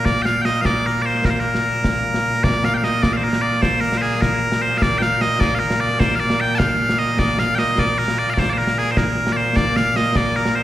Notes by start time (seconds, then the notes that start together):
Already playing: A#2 A#3
0.05 D5, concert bass drum, snare
0.22 F5 G5, snare
0.42 D#5 G5, snare
0.61 F5, concert bass drum, snare
0.65 D5
0.86 A#4
1.02 C5 D5
1.15 snare
1.25 A#4, concert bass drum, snare
1.30 C5
1.35 snare
1.40 A#4
1.55 snare
1.84 concert bass drum, snare
2.14 snare
2.35 snare
2.44 D5, concert bass drum, snare
2.64 F5, snare
2.74 F5 G5
2.84 D#5, snare
3.02 D5, concert bass drum, snare
3.13 C5 F5
3.24 A#4
3.33 snare
3.42 D5
3.53 snare
3.62 C5, concert bass drum, snare
3.73 snare
3.81 A#4
3.92 snare
3.98 C5
4.02 G#4
4.22 A#4, concert bass drum, snare
4.52 snare
4.62 C5
4.78 F5
4.82 D5, concert bass drum, snare
4.98 G5, snare
5.03 F5
5.21 D#5, snare
5.40 D5, concert bass drum, snare
5.55 F5
5.59 A#4
5.71 snare
5.80 D5
5.90 snare
6.00 C5, concert bass drum, snare
6.10 snare
6.15 F5
6.20 D5
6.30 snare
6.41 G5
6.55 F5 A5
6.60 concert bass drum, snare
6.89 snare
6.98 D#5
7.19 D5, concert bass drum, snare
7.39 F5, snare
7.55 D#5 G5, snare
7.78 D5, concert bass drum, snare
7.98 A#4
8.08 snare
8.19 D5
8.28 F5, snare
8.34 D5, concert bass drum, snare
8.39 C5
8.48 D5, snare
8.53 C5
8.58 A#4
8.67 snare
8.78 G#4
8.92 C5
8.97 A#4, concert bass drum, snare
9.27 snare
9.32 D5
9.37 C5
9.56 D5, concert bass drum, snare
9.76 F5, snare
9.96 D#5, snare
10.15 D5, concert bass drum, snare
10.36 A#4
10.46 snare
10.56 C5